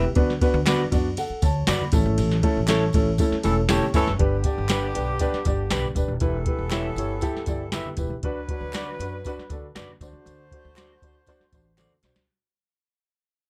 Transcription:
0.03 upright bass C#2
0.15 upright bass D2, upright piano B3 D4 F#4 B4, kick, ride, muted conga
0.30 snare
0.41 upright piano B3 D4 F#4 B4, kick, ride, tambourine, muted conga
0.54 upright bass D2
0.66 upright piano B3 D4 F#4 B4, clean electric guitar F#4 B4 D5, snare, clap, ride, tambourine, high conga
0.92 upright bass F#2, upright piano B3 D4 F#4 D5, kick, ride, tambourine, low conga
1.17 upright piano A4 F#5, ride, tambourine, muted conga
1.30 muted upright bass stroke
1.42 upright bass D2, upright piano C#5 A5, kick, ride, tambourine, muted conga
1.67 upright bass F#2, clean electric guitar F#4 B4 D5, upright piano D5 B5, snare, clap, ride, tambourine, high conga
1.81 high conga
1.92 upright bass A1, upright piano A3 C#4 E4 A4, kick, ride, tambourine
2.05 upright bass G#1
2.18 upright bass A1, ride, tambourine, muted conga
2.31 snare
2.43 upright piano A3 C#4 E4 A4, kick, ride, muted conga
2.57 upright bass A1
2.67 upright piano A3 C#4 E4 A4, clean electric guitar E4 A4 C#5, snare, clap, ride, tambourine, high conga
2.93 upright bass A1, upright piano A3 C#4 E4 A4, kick, ride, tambourine
3.18 upright piano A3 C#4 E4 A4, kick, ride, tambourine, muted conga, low conga
3.32 muted upright bass stroke, snare
3.43 upright bass E1, horn section E3 C#4 A4, upright piano A3 C#4 E4 A4, ride, tambourine, muted conga
3.69 upright piano A3 C#4 E4 G4, clean electric guitar E4 A4 C#5, snare, clap, ride, tambourine, high conga
3.83 high conga
3.94 upright bass F#1, horn section E3 C#4 A4, upright piano A3 C#4 E4 B4, clean electric guitar E4 A4 C#5, kick, ride, tambourine
4.07 upright bass F#1, snare
4.19 upright bass G1, horn section D3 B3 G4, upright piano D4 G4 B4, kick, closed hi-hat
4.44 upright piano D4 G4 D5, kick, closed hi-hat, tambourine, muted conga
4.58 upright bass G1
4.69 upright piano D4 G4 B4, clean electric guitar G4 B4 D5, snare, clap, closed hi-hat, tambourine, high conga
4.94 upright bass B1, upright piano D4 G4 B4, closed hi-hat, tambourine
5.19 upright piano D4 G4 B4, kick, closed hi-hat, tambourine, muted conga
5.33 muted upright bass stroke, snare
5.45 upright bass G1, upright piano D4 G4 D5, kick, closed hi-hat, tambourine, muted conga
5.70 upright bass B1, upright piano D4 G4 B4, clean electric guitar G4 B4 D5, snare, clap, closed hi-hat, tambourine, high conga
5.84 high conga
5.95 upright bass E1, upright piano D4 G4 B4, kick, closed hi-hat, tambourine
6.08 upright bass D#1
6.20 upright bass E1, horn section E3 B3 A4, upright piano E4 G4 B4, kick, closed hi-hat, tambourine, muted conga
6.46 upright piano E4 G4 B4, kick, closed hi-hat, muted conga
6.59 upright bass E1
6.70 upright piano E4 G4 C#5, clean electric guitar G4 B4 E5, snare, clap, closed hi-hat, tambourine, high conga
6.96 upright bass G1, upright piano E4 G4 C#5, closed hi-hat, tambourine
7.21 upright piano E4 G4 A4, kick, closed hi-hat, tambourine, muted conga, low conga
7.34 muted upright bass stroke, snare
7.46 upright bass G1, upright piano E4 G4 D5, kick, closed hi-hat, tambourine, muted conga, low conga
7.72 upright piano E4 G4 B4, clean electric guitar G4 B4 E5, snare, clap, closed hi-hat, tambourine, high conga
7.86 high conga
7.97 upright bass E1, upright piano E4 G4 B4, kick, closed hi-hat, tambourine
8.10 upright bass C#2
8.23 upright bass D2, horn section F#3 D4 B4, upright piano D4 F#4 B4, kick, closed hi-hat, muted conga
8.49 upright piano D4 F#4 B4, kick, closed hi-hat, muted conga
8.61 upright bass D2
8.73 upright piano D4 F#4 B4, clean electric guitar F#4 B4 D5, snare, clap, closed hi-hat, tambourine, high conga
8.99 upright bass F#2, upright piano D4 F#4 B4, closed hi-hat, tambourine
9.25 upright piano D4 F#4 B4, kick, closed hi-hat, tambourine, muted conga
9.38 muted upright bass stroke, snare
9.50 upright bass D2, upright piano D4 F#4 A4, kick, closed hi-hat, tambourine, muted conga
9.75 upright bass F#2, upright piano D4 F#4 B4, clean electric guitar F#4 B4 D5, snare, clap, closed hi-hat, tambourine, high conga
9.88 high conga
10.01 upright bass D2, horn section A3 F#4 C5, upright piano D4 F#4 C5, kick, closed hi-hat, tambourine
10.13 upright bass C#2
10.25 upright bass D2, closed hi-hat, tambourine, muted conga
10.51 upright piano D4 F#4 C5, kick, closed hi-hat, muted conga
10.65 upright bass D2
10.76 upright piano D4 F#4 C5, clean electric guitar F#4 C5 D5, snare, clap, closed hi-hat, tambourine, high conga
11.02 upright bass D2, upright piano D4 F#4 C5, kick, closed hi-hat, tambourine
11.26 upright piano D4 F#4 C5, kick, closed hi-hat, tambourine, muted conga, low conga
11.40 muted upright bass stroke, snare
11.52 upright bass A1, upright piano D4 F#4 C5, kick, closed hi-hat, tambourine, muted conga, low conga
11.78 upright piano D4 F#4 A4, clean electric guitar F#4 C5 D5, snare, clap, closed hi-hat, tambourine, high conga
11.90 high conga
12.03 upright bass B1, upright piano D4 F#4 C5, snare, closed hi-hat, tambourine
12.16 upright bass C#2, snare

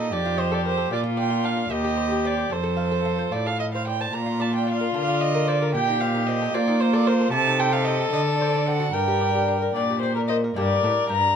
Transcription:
Already playing: cello A#2, violin D#4 D#5, lute A4
0.12 lute F2 D#4, cello F2, violin G4 D5
0.25 lute F4
0.38 violin C5, lute D#5
0.52 lute A4, violin D5
0.65 lute A#4, violin C5
0.77 lute A4
0.91 lute A#2, cello A#2, violin F4 D5
1.03 lute F4
1.17 lute D5, violin G5
1.30 lute F4
1.44 lute D4, violin F5
1.57 lute A#4
1.70 lute D#2, cello D#2, violin G4 D#5
1.84 lute G4
1.97 lute C5
2.12 lute G4
2.25 lute C4, violin D5
2.37 lute C5
2.50 lute F2, cello F2, violin A4 C5
2.63 lute A4
2.77 lute F5
2.91 lute A4
3.05 lute F4
3.18 lute C5
3.32 lute A2 F4, cello A2, violin D5
3.46 lute A4, violin F5
3.60 violin D#5, lute F5
3.73 lute C5, violin F5
3.87 lute D5, violin G5
4.01 lute C5, violin A5
4.13 lute A#2, cello A#2, violin F4 A#5
4.26 lute F4
4.40 lute D5, violin A5
4.53 lute F4, violin G5
4.67 lute D4
4.71 violin F5
4.81 lute A#4
4.94 lute D3 D4, cello D3, violin F5
5.08 lute F4
5.21 lute D5, violin D#5
5.35 lute A#4
5.48 lute C5, violin D5
5.62 lute A#4
5.74 cello A#2, lute A#2, violin G4 G5
5.88 lute D#4
6.00 lute C5, violin F5
6.15 lute D#4
6.27 lute C4, violin D#5
6.41 lute A4
6.54 cello A#3, lute A#3 C4, violin F4 D5
6.68 lute D#4
6.80 lute C5, violin C5
6.93 lute A4, violin D5
7.07 lute A#4, violin C5
7.20 lute A4
7.32 cello C3, lute C3, violin A4 A5
7.47 lute D#4
7.60 lute C5, violin G5
7.73 lute D#4, violin F5
7.85 lute C4, violin D#5
8.00 lute A4
8.12 cello D3, lute D3, violin D#5
8.27 lute D4
8.40 lute C5, violin D5
8.54 lute D4
8.66 lute C4, violin F#5
8.80 lute F#4
8.93 lute G2, cello G2, violin A#4 G5
9.08 lute G4
9.21 lute D5
9.35 lute G4
9.48 lute D4
9.62 lute A#4
9.75 cello A#2, lute A#2 D4, violin D5
9.90 lute G4
10.01 violin C5, lute D5
10.15 violin A#4, lute A#4
10.28 lute C5, violin D#5
10.44 lute A#4
10.56 lute G2 A#3 D4 G4, cello G2, violin A#4 D5
10.83 cello A2, lute A2
11.09 cello G2, lute G2, violin A#5

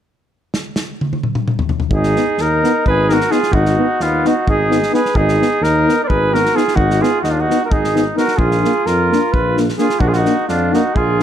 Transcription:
0.54 snare
0.76 snare
1.01 high tom
1.13 high tom
1.23 mid tom
1.35 mid tom
1.48 mid tom
1.59 floor tom
1.69 floor tom
1.80 floor tom
1.90 tuba G#1, trumpet D#4, kick
1.94 flugelhorn G#4
2.03 snare
2.16 trombone B3, euphonium D#4, snare
2.38 tuba D#2, trumpet D#4, flugelhorn A#4, snare
2.64 trombone B3, euphonium D#4, snare
2.86 tuba G#1, trumpet G#4, flugelhorn B4, kick
3.09 trombone B3, euphonium D#4, flugelhorn A#4, snare
3.13 trumpet F#4
3.21 snare
3.30 trombone B3, euphonium D#4, trumpet F4, flugelhorn G#4, snare
3.43 snare
3.52 tuba G#1, trumpet D#4, flugelhorn F#4, kick
3.66 snare
3.78 trombone B3, euphonium D#4
4.00 tuba D#2, trumpet B3, flugelhorn F4, snare
4.24 trombone B3, euphonium D#4, trumpet D#4, flugelhorn F#4, snare
4.46 tuba G#1, trumpet D#4, flugelhorn G#4, kick
4.70 trombone B3, euphonium D#4, snare
4.83 snare
4.91 trombone B3, euphonium D#4, trumpet G#4, flugelhorn B4, snare
5.06 snare
5.14 tuba G#1, trumpet D#4, flugelhorn G#4, kick
5.28 snare
5.39 trombone B3, euphonium D#4, snare
5.61 tuba D#2, trumpet D#4, flugelhorn A#4, snare
5.85 trombone B3, euphonium D#4, snare
6.04 trumpet A#4, flugelhorn B4 D5
6.09 tuba G#1, trumpet G#4, kick
6.31 trombone B3, euphonium D#4, trumpet F#4, flugelhorn A#4, snare
6.46 snare
6.54 trombone B3, euphonium D#4, trumpet F4, flugelhorn G#4, snare
6.68 snare
6.75 tuba G#1, trumpet D#4, flugelhorn F#4, kick
6.91 snare
7.00 trombone B3, euphonium D#4, trumpet F4, flugelhorn G#4, snare
7.22 tuba D#2, trumpet D#4, flugelhorn F#4, snare
7.29 trumpet D4, flugelhorn F4
7.40 trumpet D#4, flugelhorn F#4
7.49 trombone B3, euphonium D#4, snare
7.64 trumpet F#4, flugelhorn A#4
7.70 tuba G#1, trumpet D#4, flugelhorn G#4, kick
7.84 snare
7.95 trombone B3, euphonium D#4, snare
8.15 trombone B3, euphonium D#4, trumpet F#4, flugelhorn A#4, snare
8.28 snare
8.37 tuba A#1, trumpet F4, flugelhorn G#4, kick
8.51 snare
8.62 trombone A#3, euphonium D4, snare
8.86 tuba F2, trumpet F4, flugelhorn A#4, snare
9.11 trombone A#3, euphonium D4, snare
9.32 tuba A#1, trumpet F4, flugelhorn B4, kick
9.57 trombone A#3, euphonium D4, snare
9.69 snare
9.78 trombone A#3, euphonium D4, trumpet F4, flugelhorn G#4, snare
9.90 snare
10.00 tuba A#1, trumpet D4, flugelhorn F#4, kick
10.08 trumpet F4, flugelhorn G#4
10.13 flugelhorn F#4, snare
10.18 trumpet D#4
10.25 trombone A#3, euphonium D4, snare
10.47 tuba F2, trumpet D4, flugelhorn F4, snare
10.71 trombone A#3, euphonium D4, flugelhorn F#4, snare
10.75 trumpet D#4
10.94 tuba A#1, trumpet F4, flugelhorn G#4, kick
11.19 trombone A#3, euphonium D4

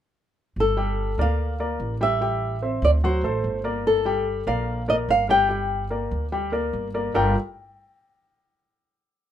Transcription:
0.56 upright bass G1
0.60 nylon-string guitar A4
0.77 grand piano G3 G4 G5
1.18 upright bass D2, grand piano A#3 A#4 D5, nylon-string guitar F5
1.60 grand piano A#3 A#4 D5
1.80 upright bass A1
2.01 grand piano G3 G4 G5, nylon-string guitar E5
2.21 grand piano G3 G4 G5
2.62 grand piano C4 C5 E5
2.82 upright bass D2, nylon-string guitar D5
3.04 grand piano F#3 F#4 F#5, nylon-string guitar C5
3.23 upright bass A1, grand piano A3 A4 C5
3.44 upright bass G1
3.64 grand piano A#3 A#4 D5
3.87 nylon-string guitar A4
4.05 grand piano G3 G4 G5
4.47 upright bass A#1, grand piano A#3 A#4 D5, nylon-string guitar F5
4.88 grand piano A#3 A#4 D5, nylon-string guitar D#5
5.09 upright bass G1, nylon-string guitar F5
5.29 grand piano G3 G4 G5, nylon-string guitar G5
5.49 grand piano G3 G4 G5
5.90 grand piano A#3 A#4 D5
6.11 upright bass D2
6.32 grand piano G3 G4 G5
6.52 grand piano A#3 A#4 D5
6.73 upright bass G1
6.94 grand piano A#3 A#4 D5
7.14 upright bass G1, grand piano G3 D4 F4 G4 A4 A#4, nylon-string guitar G5

